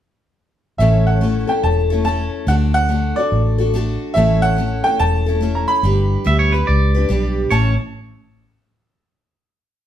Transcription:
0.78 1.44 A1 medium
0.78 1.22 A2 medium
0.78 1.22 E3 medium
0.78 1.20 A3 medium
0.78 1.20 C#4 medium
0.78 1.22 E4 medium
0.78 1.23 A4 medium
0.78 1.07 E5 medium
1.07 1.50 F#5 medium
1.21 1.49 A3 medium
1.21 1.48 C#4 medium
1.21 1.47 E4 medium
1.21 1.46 A4 medium
1.47 1.93 A3 soft
1.47 1.92 C#4 soft
1.47 1.90 E4 soft
1.47 1.90 A4 soft
1.47 1.63 G5 medium
1.63 2.28 E1 medium
1.63 2.03 A5 medium
1.90 2.03 A3 soft
1.90 2.06 C#4 soft
1.90 2.06 E4 soft
1.90 2.06 A4 medium
2.05 2.48 A3 medium
2.05 2.48 C#4 medium
2.05 2.48 E4 medium
2.05 2.49 A4 medium
2.05 2.49 A5 medium
2.47 3.12 D2 medium
2.47 2.90 D3 medium
2.47 2.88 A3 medium
2.47 2.88 D4 medium
2.47 2.90 F#4 medium
2.47 2.91 A4 medium
2.47 2.54 F#5 medium
2.74 3.18 F#5 loud
2.89 3.17 A3 medium
2.89 3.17 D4 medium
2.89 3.17 F#4 medium
2.89 3.15 A4 medium
3.16 3.60 D4 soft
3.16 3.59 F#4 soft
3.16 3.57 A4 soft
3.16 3.97 D5 medium
3.32 3.96 A1 medium
3.58 3.74 D4 soft
3.58 3.75 F#4 medium
3.58 3.74 A4 medium
3.74 4.16 A3 medium
3.74 4.17 D4 medium
3.74 4.17 F#4 medium
3.74 4.16 A4 medium
4.14 4.81 A1 medium
4.14 4.58 A2 medium
4.14 4.58 E3 medium
4.14 4.55 A3 medium
4.14 4.57 C#4 medium
4.14 4.58 E4 medium
4.14 4.59 A4 medium
4.14 4.43 E5 medium
4.42 4.86 F#5 loud
4.56 4.85 A3 medium
4.56 4.85 C#4 medium
4.56 4.84 E4 medium
4.56 4.83 A4 medium
4.84 5.28 A3 soft
4.84 5.28 C#4 soft
4.84 5.27 E4 soft
4.84 5.25 A4 medium
4.84 5.00 G5 medium
5.00 5.64 E1 medium
5.00 5.39 A5 loud
5.26 5.39 A3 soft
5.26 5.41 C#4 soft
5.26 5.42 E4 medium
5.26 5.42 A4 medium
5.41 5.83 A3 medium
5.41 5.83 C#4 medium
5.41 5.84 E4 medium
5.41 5.85 A4 medium
5.55 5.69 A#5 medium
5.68 7.05 B5 medium
5.83 6.15 G1 medium
5.83 6.23 G3 medium
5.83 6.24 D4 medium
5.83 6.25 G4 medium
5.83 6.26 B4 medium
6.24 6.62 D2 medium
6.24 6.52 G3 medium
6.24 6.53 D4 medium
6.24 6.53 G4 medium
6.24 6.51 B4 medium
6.24 6.39 E5 medium
6.39 6.53 C#5 medium
6.52 6.96 D4 soft
6.52 6.95 G4 medium
6.52 6.93 B4 medium
6.52 6.67 B4 medium
6.67 7.04 C#2 medium
6.67 7.41 D5 medium
6.95 7.09 D4 medium
6.95 7.10 G4 medium
6.95 7.09 B4 medium
7.09 7.45 B1 medium
7.09 7.51 G3 medium
7.09 7.51 D4 medium
7.09 7.52 G4 medium
7.09 7.52 B4 medium
7.50 7.77 A1 medium
7.50 7.72 A2 medium
7.50 7.73 E3 medium
7.50 7.73 A3 medium
7.50 7.73 C#4 medium
7.50 7.74 E4 medium
7.50 7.76 C#5 medium
7.50 7.74 C#5 medium
7.50 7.76 A5 medium

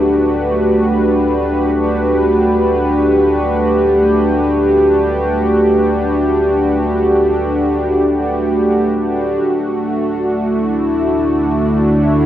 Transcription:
0.00 9.37 D2 medium
0.00 9.42 A3 medium
0.00 9.43 D4 medium
0.00 12.26 F#4 medium
0.00 9.42 G4 medium
0.00 9.42 B4 medium
9.42 12.26 D2 medium
9.42 12.26 D3 medium
9.42 12.26 A3 medium
9.42 12.26 D4 medium
9.56 12.26 D4 medium
10.36 12.26 E4 medium
11.91 12.26 C#5 medium

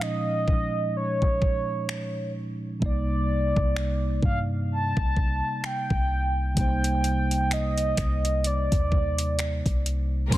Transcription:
0.00 2.77 A#2 medium
0.00 2.78 F3 medium
0.00 2.79 G#3 medium
0.00 2.79 C#4 medium
0.00 2.80 D#4 medium
0.00 0.96 D#5 loud
0.00 finger snap loud
0.48 kick medium
0.97 2.32 C#5 medium
1.22 kick medium
1.42 kick medium
1.89 finger snap loud
2.80 3.53 C2 loud
2.80 6.52 C3 medium
2.80 6.53 G3 medium
2.80 6.54 A#3 medium
2.80 kick loud
2.85 6.54 D#4 medium
2.85 4.20 D5 medium
2.85 6.55 D5 medium
3.56 4.20 C2 medium
3.56 kick medium
3.76 finger snap medium
4.22 4.94 G2 loud
4.22 4.39 F5 medium
4.22 kick medium
4.72 5.67 A5 loud
4.97 5.42 C2 loud
4.97 kick medium
5.17 kick medium
5.64 6.58 G5 loud
5.64 finger snap loud
5.90 6.54 C2 loud
5.90 kick medium
6.55 7.94 C2 loud
6.55 10.27 C3 medium
6.55 10.28 G3 medium
6.55 10.28 A#3 medium
6.55 kick loud
6.55 closed hi-hat medium
6.59 10.29 D#4 medium
6.59 10.30 C5 medium
6.59 7.55 G5 loud
6.84 closed hi-hat soft
7.04 closed hi-hat medium
7.31 closed hi-hat soft
7.51 8.48 D#5 medium
7.51 finger snap loud
7.51 closed hi-hat medium
7.78 closed hi-hat soft
7.97 8.69 C2 loud
7.97 finger snap medium
7.97 kick medium
7.97 closed hi-hat medium
8.25 closed hi-hat soft
8.44 9.86 D5 medium
8.44 closed hi-hat medium
8.72 9.62 D#2 loud
8.72 kick loud
8.72 closed hi-hat medium
8.92 kick medium
9.18 closed hi-hat medium
9.39 finger snap loud
9.39 closed hi-hat medium
9.66 10.29 C2 loud
9.66 kick medium
9.66 closed hi-hat soft
9.86 closed hi-hat medium
10.29 10.38 A#1 loud
10.29 10.38 A#2 medium
10.29 10.38 F3 medium
10.29 10.38 G#3 medium
10.29 10.38 A#3 medium
10.29 10.38 C#4 medium
10.29 10.38 G#4 medium
10.29 10.38 A#4 medium
10.29 10.38 C6 medium
10.29 kick loud
10.29 closed hi-hat medium
10.29 crash loud
10.34 10.38 C#4 medium

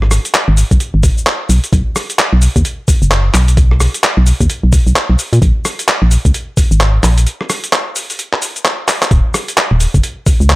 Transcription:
0.00 0.19 G#1 medium
0.00 cross-stick soft
0.11 cross-stick medium
0.11 open hi-hat loud
0.11 cabasa medium
0.25 closed hi-hat medium
0.25 cabasa soft
0.34 clap loud
0.34 closed hi-hat medium
0.34 cabasa soft
0.48 0.63 G#1 loud
0.57 open hi-hat loud
0.57 cabasa medium
0.71 0.78 B1 medium
0.71 kick medium
0.71 closed hi-hat soft
0.71 cabasa soft
0.80 closed hi-hat medium
0.80 cabasa soft
0.94 1.10 G#1 medium
1.03 kick loud
1.03 open hi-hat loud
1.03 cabasa medium
1.18 cabasa soft
1.26 clap loud
1.26 closed hi-hat medium
1.26 cabasa soft
1.49 1.60 B1 medium
1.49 open hi-hat loud
1.49 cabasa medium
1.64 closed hi-hat medium
1.64 cabasa soft
1.73 1.83 B1 loud
1.73 kick loud
1.73 closed hi-hat medium
1.73 cabasa soft
1.96 cross-stick medium
1.96 open hi-hat medium
1.96 cabasa medium
2.10 closed hi-hat medium
2.10 cabasa soft
2.19 clap loud
2.19 closed hi-hat medium
2.19 cabasa soft
2.33 2.48 B1 medium
2.42 open hi-hat loud
2.42 cabasa medium
2.56 2.62 D#2 medium
2.56 kick medium
2.56 closed hi-hat soft
2.56 cabasa soft
2.65 closed hi-hat medium
2.65 cabasa soft
2.88 kick loud
2.88 open hi-hat loud
2.88 cabasa medium
3.02 3.30 F#1 medium
3.02 cabasa soft
3.11 clap loud
3.11 closed hi-hat medium
3.11 cabasa soft
3.34 3.88 B1 medium
3.34 clap medium
3.34 open hi-hat loud
3.34 cabasa medium
3.48 closed hi-hat medium
3.48 cabasa soft
3.57 kick loud
3.57 closed hi-hat medium
3.57 cabasa soft
3.71 cross-stick soft
3.80 cross-stick medium
3.80 open hi-hat loud
3.80 cabasa medium
3.94 closed hi-hat medium
3.94 cabasa soft
4.03 clap loud
4.03 closed hi-hat medium
4.03 cabasa soft
4.17 4.33 B1 loud
4.27 open hi-hat loud
4.27 cabasa medium
4.41 4.47 D#2 medium
4.41 kick medium
4.41 closed hi-hat soft
4.41 cabasa soft
4.50 closed hi-hat medium
4.50 cabasa soft
4.63 4.79 B1 medium
4.73 kick loud
4.73 open hi-hat loud
4.73 cabasa medium
4.87 4.93 B1 medium
4.87 cabasa soft
4.96 clap loud
4.96 closed hi-hat medium
4.96 cabasa soft
5.10 5.16 B1 medium
5.19 open hi-hat loud
5.19 cabasa medium
5.33 5.39 A#2 loud
5.33 closed hi-hat medium
5.33 cabasa soft
5.42 5.52 A#1 loud
5.42 kick loud
5.42 closed hi-hat medium
5.42 cabasa soft
5.65 cross-stick medium
5.65 open hi-hat loud
5.65 cabasa medium
5.79 closed hi-hat medium
5.79 cabasa soft
5.88 clap loud
5.88 closed hi-hat medium
5.88 cabasa soft
6.02 6.17 A#1 medium
6.11 open hi-hat loud
6.11 cabasa medium
6.25 6.32 C#2 medium
6.25 kick medium
6.25 closed hi-hat soft
6.25 cabasa soft
6.34 closed hi-hat medium
6.34 cabasa soft
6.57 kick loud
6.57 open hi-hat loud
6.57 cabasa medium
6.71 6.99 G#1 medium
6.71 cabasa soft
6.80 clap loud
6.80 closed hi-hat medium
6.80 cabasa soft
7.03 7.26 A#1 medium
7.03 clap medium
7.03 open hi-hat loud
7.03 cabasa medium
7.18 closed hi-hat medium
7.18 cabasa soft
7.27 closed hi-hat medium
7.27 cabasa soft
7.41 cross-stick soft
7.50 cross-stick medium
7.50 open hi-hat loud
7.50 cabasa medium
7.64 closed hi-hat medium
7.64 cabasa soft
7.73 clap loud
7.73 closed hi-hat medium
7.73 cabasa soft
7.96 open hi-hat loud
7.96 cabasa medium
8.10 open hi-hat medium
8.10 cabasa soft
8.19 closed hi-hat medium
8.19 cabasa soft
8.33 clap medium
8.42 open hi-hat loud
8.42 cabasa medium
8.56 closed hi-hat soft
8.56 cabasa soft
8.65 clap loud
8.65 closed hi-hat medium
8.65 cabasa soft
8.88 clap medium
8.88 open hi-hat loud
8.88 cabasa medium
9.02 clap loud
9.02 closed hi-hat medium
9.02 cabasa soft
9.11 9.21 D#1 loud
9.11 kick loud
9.11 closed hi-hat medium
9.11 cabasa soft
9.34 cross-stick medium
9.34 open hi-hat loud
9.34 cabasa medium
9.48 closed hi-hat medium
9.48 cabasa soft
9.57 clap loud
9.57 closed hi-hat medium
9.57 cabasa soft
9.71 9.87 D#1 medium
9.80 open hi-hat loud
9.80 cabasa medium
9.94 10.01 F#1 medium
9.94 kick medium
9.94 closed hi-hat soft
9.94 cabasa soft
10.03 closed hi-hat medium
10.03 cabasa soft
10.26 kick loud
10.26 open hi-hat loud
10.26 cabasa medium
10.40 10.55 C#2 medium
10.40 cabasa soft
10.50 clap loud
10.50 closed hi-hat medium
10.50 cabasa soft

